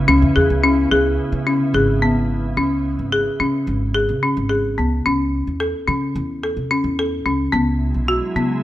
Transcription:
0.00 2.53 C#3 medium
0.00 2.53 B3 medium
0.00 2.53 E4 medium
0.08 0.21 C#2 loud
0.08 0.31 C#4 medium
0.22 0.35 E2 medium
0.36 0.49 E2 medium
0.36 0.58 G#4 medium
0.50 0.87 C#2 medium
0.64 0.86 C#4 medium
0.91 1.16 C#2 medium
0.91 1.37 G#4 medium
1.32 1.57 C#3 medium
1.47 1.69 C#4 medium
1.74 2.53 G#1 medium
1.74 1.97 G#4 medium
2.02 2.47 B3 medium
2.57 2.94 C#2 medium
2.57 3.02 C#4 medium
2.99 3.24 G#1 medium
3.12 3.35 G#4 medium
3.40 3.65 C#3 medium
3.40 3.85 C#4 medium
3.67 4.10 G#1 medium
3.94 4.17 G#4 medium
4.09 4.34 C#3 medium
4.23 4.45 C#4 medium
4.37 4.74 G#1 medium
4.49 4.72 G#4 medium
4.78 5.03 C#2 medium
4.78 5.01 B3 medium
5.06 5.43 C#2 medium
5.06 5.51 C#4 medium
5.47 5.72 E2 medium
5.60 5.83 A4 medium
5.88 6.13 C#3 medium
5.88 6.33 C#4 medium
6.15 6.58 E2 medium
6.43 6.66 A4 medium
6.57 6.82 C#3 medium
6.71 6.94 C#4 medium
6.84 7.22 E2 medium
6.99 7.22 A4 medium
7.26 7.51 C#2 medium
7.26 7.49 C#4 medium
7.52 7.91 C#2 medium
7.52 8.63 F#3 medium
7.52 8.63 G#3 medium
7.52 7.98 B3 medium
7.52 8.63 E4 medium
7.94 8.20 B1 medium
8.08 8.31 F#4 medium
8.36 8.61 C#3 medium
8.36 8.63 B3 medium

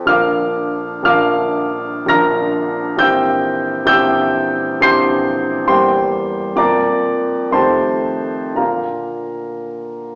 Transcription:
0.00 0.12 F2 soft
0.00 0.07 F3 soft
0.00 0.12 C4 soft
0.00 0.12 A4 soft
0.06 1.01 A#1 soft
0.06 1.03 F3 soft
0.06 1.04 D4 soft
0.06 1.04 A#4 soft
0.06 1.03 F5 medium
0.06 1.03 D6 medium
0.06 1.04 F6 medium
1.03 2.05 A#1 medium
1.03 2.06 F3 soft
1.03 2.07 D4 soft
1.03 2.08 A#4 soft
1.03 2.06 F5 medium
1.03 2.06 D6 medium
1.03 2.08 F6 medium
2.06 2.96 A#1 medium
2.06 2.97 F3 soft
2.06 2.98 D4 soft
2.06 2.98 A#4 soft
2.06 2.97 A#5 medium
2.06 2.97 F6 medium
2.06 3.00 A#6 medium
2.97 3.84 A#1 medium
2.97 3.85 E3 soft
2.97 3.86 C4 soft
2.97 3.87 G4 soft
2.97 3.85 G5 medium
2.97 3.85 E6 medium
2.97 3.85 G6 medium
3.86 4.79 A#1 medium
3.86 4.80 E3 soft
3.86 4.81 C4 soft
3.86 4.81 G4 soft
3.86 4.80 G5 medium
3.86 4.80 E6 medium
3.86 4.81 G6 loud
4.81 5.66 A#1 medium
4.81 5.67 E3 medium
4.81 5.67 C4 soft
4.81 5.68 G4 soft
4.81 5.66 C6 medium
4.81 5.66 G6 medium
4.81 5.70 C7 loud
5.66 6.54 E2 soft
5.66 6.55 G3 soft
5.66 6.56 A#3 soft
5.66 6.56 G4 soft
5.66 6.55 C5 medium
5.66 6.55 G5 medium
5.66 6.58 C6 medium
6.55 7.50 F2 medium
6.55 7.51 F3 soft
6.55 7.51 A#3 soft
6.55 7.52 A#4 soft
6.55 7.50 D5 medium
6.55 7.50 A#5 medium
6.55 7.54 D6 medium
7.51 8.54 F2 soft
7.51 8.55 D#3 soft
7.51 8.55 A3 soft
7.51 8.56 G4 soft
7.51 8.54 C5 medium
7.51 8.55 A5 medium
7.51 8.58 C6 medium
8.55 10.15 A#2 soft
8.55 10.15 D3 soft
8.55 10.15 A#3 soft
8.55 10.15 F4 soft
8.55 10.15 A#4 soft
8.55 10.15 F5 soft
8.55 10.15 A#5 soft

